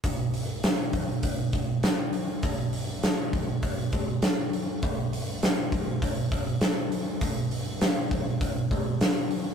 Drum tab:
HH |oooooooo|oooooooo|oooooooo|oooooooo|
SD |--o---o-|--o---o-|--o---o-|--o---o-|
BD |o--ooo--|o--ooo--|o--ooo--|o--ooo--|